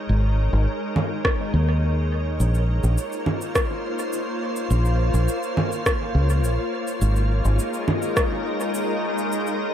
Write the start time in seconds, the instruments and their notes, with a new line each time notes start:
Already playing: ambient pad G#3 D#4 A#4 C#5
0.09 fingered electric bass G#1
0.53 fingered electric bass G#1
0.96 low conga
1.25 kick, cross-stick
1.54 fingered electric bass D#2
2.40 fingered electric bass A#1, ambient pad A#3, cabasa
2.55 cabasa
2.64 ambient pad F4
2.79 ambient pad C5
2.83 fingered electric bass A#1, cabasa
2.98 cabasa
3.12 cabasa
3.26 low conga
3.41 cabasa
3.55 kick, cross-stick, cabasa
3.99 cabasa
4.13 cabasa
4.56 cabasa
4.70 fingered electric bass A#1, cabasa
4.85 cabasa
5.14 fingered electric bass A#1, cabasa
5.28 cabasa
5.43 cabasa
5.57 low conga
5.72 cabasa
5.86 kick, cross-stick, cabasa
6.15 fingered electric bass C#2
6.30 cabasa
6.44 fingered electric bass A#1, cabasa
6.87 cabasa
7.01 fingered electric bass G#1, ambient pad G#3, cabasa
7.16 cabasa
7.21 ambient pad D#4
7.31 ambient pad A#4
7.45 fingered electric bass G#1, cabasa
7.59 cabasa
7.74 cabasa
7.88 low conga
8.02 cabasa
8.17 kick, cross-stick, cabasa
8.60 cabasa
8.74 cabasa
9.18 cabasa
9.32 cabasa
9.47 cabasa